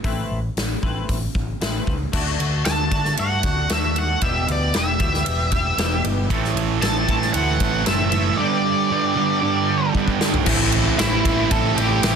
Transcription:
0.04 A1 A3 C4 E4 B4, kick, open hi-hat
0.31 A1
0.57 A1, snare, open hi-hat
0.83 A1 A3 C4 E4 B4, kick
1.09 A1, kick, open hi-hat
1.35 A1, kick
1.61 A1 A3 C4 E4 B4, snare, open hi-hat
1.87 C#2, kick
2.12 D2 D3 A3 D4 F#4, kick, crash
2.39 D2 A3 D4 F#4, ride
2.65 D2 D3 A3 D4 F#4 A5, snare, ride
2.91 D3 A3 D4 F#4, kick, ride
3.05 snare
3.17 G2 D3 A3 D4 F#4 F#5, ride
3.43 D2 A3 D4 F#4, kick, ride
3.68 D#2 D3 A3 D4 F#4, snare, ride
3.73 E5
3.94 A3 D4 F#4, ride
3.98 F#5
4.20 E1 E2 B2 E3 G3 B3 G4 E5, kick, ride
4.47 D2 E3 G3 B3 G4, ride
4.52 D5
4.73 E1 E3 G3 B3 G4, snare, ride
4.77 E5
4.99 D2 E2 B2 E3 G3 B3 G4, kick, ride
5.14 snare
5.25 E1 E3 G3 B3 G4, ride
5.51 E3 G3 B3 G4, kick, ride
5.77 E1 E2 B2 E3 G3 B3 G4, snare, ride
6.03 G1 E3 G3 B3 G4, ride
6.30 A1 A2 E3 A3 C4 E4 A4, kick, ride
6.45 snare
6.55 A1 C4 E4 A4, ride
6.81 A1 A2 E3 A3 C4 E4 A4 A5, snare, ride
7.08 A2 E3 A3 C4 E4 A4, kick, ride
7.22 snare
7.33 D2 A2 E3 A3 C4 E4 A4 F#5, ride
7.60 A1 C4 E4 A4, kick, ride
7.86 F#1 A2 E3 A3 C4 E4 A4 E5, snare, ride
8.12 A2 E3 A3 C4 E4 A4, ride
8.37 G2 D3 G3 B3 D4 G4 D5
8.65 G3 B3 D4 G4
8.90 G2 D3 G3 B3 D4 G4
9.15 G2 D3 G3 B3 D4 G4
9.42 G2 D3 G3 B3 D4 G4
9.68 G3 B3 D4 G4
9.93 G2 D3 G3 B3 D4, kick
9.97 G4
10.08 kick
10.19 G2 D3 G3 B3 D4 G4, snare
10.34 floor tom
10.44 A1 A2 E3 A3 C4 E4, kick, crash
10.72 A3 C4 E4, ride
10.97 A1 E3 A3 C4 E4 E5, snare, ride
11.23 A1 A3 C4 E4, kick, ride
11.51 A1 A4 A5, kick, ride
11.75 A1 A3 C4 E4 G4 G5, ride
12.02 A1 A2 E3 A3 C4 E4 G4 G5, snare, ride

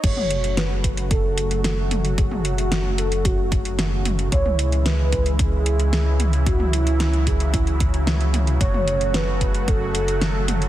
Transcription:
0.04 F#1 C#3 F#3 A3 F#4 C#5, kick, closed hi-hat, crash
0.17 mid tom
0.31 closed hi-hat
0.44 closed hi-hat
0.57 B4, snare, closed hi-hat
0.84 kick, closed hi-hat
0.97 closed hi-hat
1.11 A4, kick, closed hi-hat
1.38 closed hi-hat
1.51 closed hi-hat
1.64 A4, snare, closed hi-hat
1.91 closed hi-hat, mid tom
2.05 closed hi-hat
2.18 G#4, kick, closed hi-hat
2.31 mid tom
2.45 F#4, closed hi-hat
2.58 closed hi-hat
2.72 snare, closed hi-hat
2.98 A4, closed hi-hat
3.12 closed hi-hat
3.25 F#4, kick, closed hi-hat
3.52 kick, closed hi-hat
3.65 closed hi-hat
3.79 snare, closed hi-hat
4.05 closed hi-hat, mid tom
4.19 closed hi-hat
4.32 C#2 E3 G#3 E4 C#5, kick, closed hi-hat
4.46 mid tom
4.59 closed hi-hat
4.72 closed hi-hat
4.86 B4, snare, closed hi-hat
5.12 kick, closed hi-hat
5.26 closed hi-hat
5.39 G#4, kick, closed hi-hat
5.66 closed hi-hat
5.80 closed hi-hat
5.93 G#4, snare, closed hi-hat
6.20 closed hi-hat, mid tom
6.33 closed hi-hat
6.46 F#4, kick, closed hi-hat
6.60 mid tom
6.73 E4, closed hi-hat
6.87 closed hi-hat
7.00 snare, closed hi-hat
7.13 closed hi-hat
7.27 G#4, kick, closed hi-hat
7.40 closed hi-hat
7.54 E4, kick, closed hi-hat
7.67 closed hi-hat
7.80 kick, closed hi-hat
7.94 closed hi-hat
8.07 snare, closed hi-hat
8.21 closed hi-hat
8.34 closed hi-hat, mid tom
8.47 closed hi-hat
8.61 F#1 F#3 A3 F#4 C#5, kick, closed hi-hat
8.74 mid tom
8.88 closed hi-hat
9.01 closed hi-hat
9.14 B4, snare, closed hi-hat
9.41 kick, closed hi-hat
9.55 closed hi-hat
9.68 A4, kick, closed hi-hat
9.95 closed hi-hat
10.08 closed hi-hat
10.21 A4, snare, closed hi-hat
10.48 closed hi-hat, mid tom
10.62 closed hi-hat

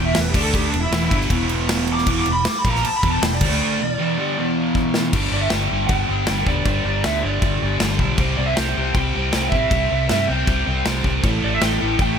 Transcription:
Already playing: E1 E2 B2 E3
0.05 E5
0.15 E1 E2 B2, snare, crash
0.19 B4
0.29 G4
0.33 D2 D3 A3 D4, kick, crash
0.42 A4
0.54 G4, kick, crash
0.67 D4
0.72 E1 E2 B2, crash
0.80 E4
0.91 E1 E2 B2 E3, snare, crash
1.11 G1 G2 D3 G3, kick, crash
1.21 snare
1.30 E1 E2 B2 E3, kick, crash
1.49 crash
1.69 snare, crash
1.87 crash
1.93 D6
1.98 snare
2.07 E1 E2 B2 E3, kick, crash
2.19 D6
2.26 E1 E2 B2, crash
2.33 B5
2.45 D6, snare, crash
2.59 B5
2.65 A#1 A#2 F3 A#3, kick, crash
2.71 A#5
2.75 snare
2.82 A5, muted overdriven electric guitar stroke, crash
2.96 B5
3.03 E1 E2 B2 E3, kick, crash
3.09 A5
3.22 E1 E2 B2 G5, snare, crash
3.34 D5
3.41 D2 D3 A3 D4, kick, crash
3.51 snare
3.79 E2 B2
3.99 E2 B2 E3
4.17 G2 D3 G3
4.38 E2 B2 E3
4.75 kick
4.94 snare
5.13 G1 G2 D3 G3, kick, crash
5.31 G1 G2 D3 G3 D5
5.41 E5
5.50 G1 G2 D3 G3 G5, snare, crash
5.71 G1 G2 D3 G3
5.88 G1 G2 D3 G3 G5, kick, crash
6.08 G1 G2 D3 G3
6.27 G1 G2 D3 G3, snare, crash
6.46 E1 G2 D3 G3 D5, kick
6.65 G1 G2 D3 G3, kick, crash
6.85 G1 G2 D3 G3
7.04 D2 G2 D3 G3 E5, snare, crash
7.20 G2 D3 D5
7.24 G1 G3
7.42 G1 G2 D3 G3, kick, crash
7.62 G1 G2 D3 G3
7.80 G1 G2 D3 G3, snare, crash
7.99 B1 G2 D3 G3, kick
8.17 C2 C3 G3 C4, kick, crash
8.37 C2 C3 G3 C4 D5
8.46 E5
8.56 C2 C3 G3 C4 G5, snare, crash
8.76 C2 C3 G3 C4
8.94 C2 C3 G3 C4 G5, kick, crash
9.14 C2 C3 G3 C4
9.33 C2 C3 G3 C4, snare, crash
9.49 A1 C3 G3 E5, kick
9.53 C4
9.70 C2 C3 G3 C4, kick, crash
9.90 C2 C3 G3 C4
10.09 G2 C3 G3 C4 E5, snare, crash
10.27 C2 C3 G3 C4 G5
10.46 C2 C3 G3 C4, kick, crash
10.66 C2 C3 G3 C4
10.85 C2 C3 G3 C4, snare, crash
11.04 C2 C3 G3 C4, kick
11.23 A1 A2 E3 A3, kick, crash
11.41 A1 A2 E3 A3 D5
11.54 E5
11.60 A1 A2 E3 A3 G5, snare, crash
11.80 A1 A2 E3 A3
11.99 A1 A2 E3 A3 G5, kick, crash

